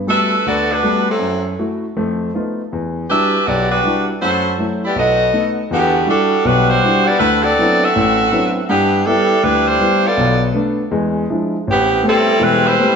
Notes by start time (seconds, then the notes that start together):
0.07 G3 A3 B3 D4 F#4 A4 B4 E5
0.46 D2 B3 F#4 A4 D5
0.71 A3 D4 F#4 B4
0.83 G3 A3 B3 F#4
1.10 F#3 C4 E4 A4
1.19 F#2
1.59 A3 E4 F#4
1.97 F2 A3
2.35 A3 B3 D#4 F4
2.73 E2
3.10 G3 D4 E4 F#4 G4 B4 E5
3.46 B1 B3 F#4 G4 D5
3.71 G3 D4 F#4 B4
3.84 G3 D4 E4 F#4
4.20 F#2 A3 E4 F#4 C5
4.58 F#3 A3 E4
4.85 B3 E4 G4 D5
4.96 B1 B3 F#4 A4 D#5
5.33 A3 B3 D#4
5.71 E2 D3 B3 F#4 G4
6.06 G3 D4 E4 F#4 A4
6.45 B1 B2 G3 D4 F#4 B4
6.68 G3 D4 F#4 C5
6.83 G3 D4 E4 F#4
7.05 B3 F#4 G4 D5
7.18 D2 A3 E4 F#4 B4
7.42 C4 F#4 A4 D5
7.59 F#3 B3 C4 D4 E4
7.81 C4 F#4 A4 E5
7.96 A1 A2
8.31 F#3 B3 C4 D4 E4
8.68 G2 E3 B3 D4 G4
9.05 G3 B3 D4 E4 A4
9.42 D2 G3 D4 E4 B4
9.67 G3 D4 E4 C5
9.80 G3 B3 E4
10.05 B3 F4 A4 D5
10.17 B1 B2
10.54 A3 B3 D4
10.91 E2 G#3
11.30 F3 G#3 D4 E4
11.67 A1 E3 B3 C4 G4
12.03 G3 A3 B3 C4 G4
12.07 C4 E4 A4
12.40 E1 E2 G3 C4 E4 B4
12.66 G3 E4 B4 C5
12.79 A3 B3 C4 G4